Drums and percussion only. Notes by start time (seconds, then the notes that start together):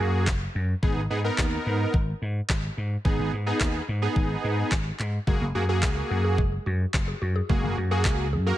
0.27 kick, snare, clap
0.83 kick
1.38 kick, snare, clap
1.94 kick
2.49 kick, snare, clap
3.05 kick
3.61 kick, snare, clap
4.16 kick
4.72 kick, snare, clap
5.00 clap
5.27 kick
5.83 kick, snare, clap
6.38 kick
6.94 kick, snare, clap
7.50 kick
8.05 kick, snare, clap